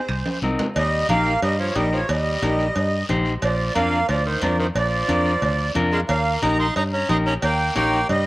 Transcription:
Already playing: C5
0.09 C2, high conga, high timbale, long guiro
0.26 high conga, high timbale
0.42 C2 C4 D#4 A#4, low timbale, short guiro
0.59 low conga, low timbale, short guiro
0.76 D#2 G3 D#5, cowbell, high conga, long guiro
1.09 A#1 A#3 D#4 G4 A#4 F5, cowbell, high conga, short guiro
1.26 short guiro
1.42 G2 G3 D#5, cowbell, high conga, long guiro
1.59 F3 C#5
1.75 A#1 G3 D#4 G4 A#4 D#5, cowbell, high conga, short guiro
1.92 F3 C#5, short guiro
2.08 D#2 G3 D#5, cowbell, high conga, long guiro
2.42 A#1 D#4 G4 A#4, cowbell, high conga, short guiro
2.59 short guiro
2.76 G2, cowbell, high conga, long guiro
3.09 A#1 D#4 G4 C5, cowbell, high conga, low conga, short guiro
3.25 short guiro
3.42 A#1 F3 D5, cowbell, high conga, long guiro
3.75 F2 A#3 D4 F4 A#4 F5, cowbell, high conga, short guiro
3.92 short guiro
4.08 D2 F3 D5, cowbell, high conga, long guiro
4.26 D#3 C5
4.42 F2 F3 D4 F4 A#4 D5, cowbell, high conga, low timbale, short guiro
4.59 D#3 C5, short guiro
4.75 A#1 F3 D5, cowbell, high conga, long guiro
5.08 F2 D4 F4 A#4, cowbell, high conga, short guiro
5.26 short guiro
5.42 D2, cowbell, high conga, low conga, long guiro
5.75 F2 D4 F4 A#4, cowbell, high conga, low conga, short guiro
5.92 G#3 F5, short guiro
6.09 D#2 A#3 F5, cowbell, high conga, long guiro
6.42 A#1 D#4 G4 A#4 A#5, cowbell, high conga, short guiro
6.59 D#4 C6, short guiro
6.76 G2 D#4 A#5, cowbell, high conga, long guiro
6.93 C#4 A#5
7.09 A#1 D#4 G4 A#4 C6, cowbell, high conga, short guiro
7.26 C#4 A#5, short guiro
7.42 D#2 A#3 G5, cowbell, high conga, long guiro
7.75 A#1 A#3 D#4 G4 C#5 G5, cowbell, high conga, short guiro
7.93 short guiro
8.09 G2 G3 D#5, cowbell, high conga, low conga, long guiro

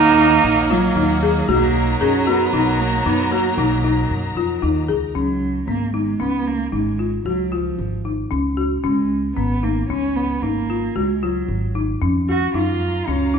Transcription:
Already playing: D#2 A#3 D#4 C#5 F#5
0.18 D#4
0.44 A#1
0.70 F#3 F4
0.96 D#2 D#4
1.23 G#4
1.48 B1 F#3 A#3 F#4 A#4 A#5
2.01 F#2 C#4 G#4
2.27 B3 F#4
2.53 B1 D#4
2.80 A#3
3.06 F#2 B3 D#4
3.32 A#3 F#4
3.57 B1 D#4
3.84 D#4
4.10 F#2
4.36 F2 F4
4.62 D#2 D#4
4.88 C#2 G#4
5.15 C#2 F#3 C#4
5.67 G#1 A#3 B3
5.94 G#3 D#4
6.20 C#2 B3 C#4
6.47 A#3
6.72 G#1 G#3 D#4
6.99 F4
7.25 C#2 F#3 F#4
7.52 F3 F4
7.78 G#1
8.05 D#4
8.31 C#2 C#4
8.57 F#4
8.84 C#2 G#3 C#4
9.36 G#1 B3
9.63 A#3 D#4
9.89 C#2 C#4
10.16 B3
10.42 G#1 A#3 D#4
10.70 F4
10.96 C#2 G#3 F#4
11.23 F#3 F4
11.48 G#1
11.75 D#4
12.02 F2 C#4
12.29 F#4
12.54 F#2 F#3 D#4 F4 F5 A#5
13.08 C#2 C#4
13.34 D#4

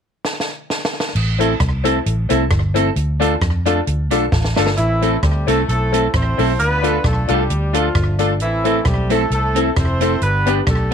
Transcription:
0.25 snare
0.40 snare
0.70 snare
0.85 snare
1.00 snare
1.15 A1, crash
1.39 A3 C4 E4 A4, closed hi-hat
1.60 C2, kick, cross-stick, closed hi-hat
1.84 A3 C4 E4 A4, closed hi-hat
2.05 A1 E4 A4, closed hi-hat
2.29 C2 A3 C4 E4 A4, closed hi-hat
2.50 G1 E4 A4, kick, cross-stick, closed hi-hat
2.74 A3 C4 E4 A4, closed hi-hat
2.96 D2, closed hi-hat
3.20 A3 D4 F4 A4, closed hi-hat
3.41 F2, kick, cross-stick, closed hi-hat
3.66 A3 D4 F4 A4, closed hi-hat
3.87 D2 F4 A4, closed hi-hat
4.11 B1 A3 D4 F4 A4, closed hi-hat
4.32 A1 F4 A4, kick, snare
4.45 snare
4.56 G1 A3 D4 F4 A4, snare
4.67 snare
4.77 A1 E3 A3 C4 E4, closed hi-hat
5.02 A3 C4 E4 A4, closed hi-hat
5.23 D2 G3 G4, kick, cross-stick, closed hi-hat
5.47 C2 A3 C4 E4 A4, closed hi-hat
5.68 B1 A3 C4 E4 A4, closed hi-hat
5.92 A3 C4 E4 A4, closed hi-hat
6.14 A1 C4 E4 A4 C5, kick, cross-stick, closed hi-hat
6.38 B1 A3 C4 E4 A4, open hi-hat
6.59 D2 B3 D4 F4 B4, closed hi-hat
6.82 A3 D4 F4 A4, closed hi-hat
7.04 B1 A3 A4, kick, cross-stick, closed hi-hat
7.28 C2 G3 A3 D4 F4 G4 A4, closed hi-hat
7.50 D2, closed hi-hat
7.73 F3 A3 D4 F4 A4, closed hi-hat
7.95 G1, kick, cross-stick, closed hi-hat
8.19 A3 D4 F4 A4, closed hi-hat
8.40 A1 E3 A3 C4 E4, closed hi-hat
8.64 A3 C4 E4 A4, closed hi-hat
8.85 B1 G3 G4, kick, cross-stick, closed hi-hat
9.10 A3 C4 E4 A4, closed hi-hat
9.30 C2 A3 C4 E4 A4, closed hi-hat
9.55 A3 C4 E4 A4, closed hi-hat
9.76 F1 C4 E4 A4 C5, kick, cross-stick, closed hi-hat
10.00 A3 C4 E4 A4, closed hi-hat
10.21 G1 B3 D4 G4 B4, closed hi-hat
10.46 B3 D4 G4 B4, closed hi-hat
10.67 B1 A3 A4, kick, cross-stick, closed hi-hat

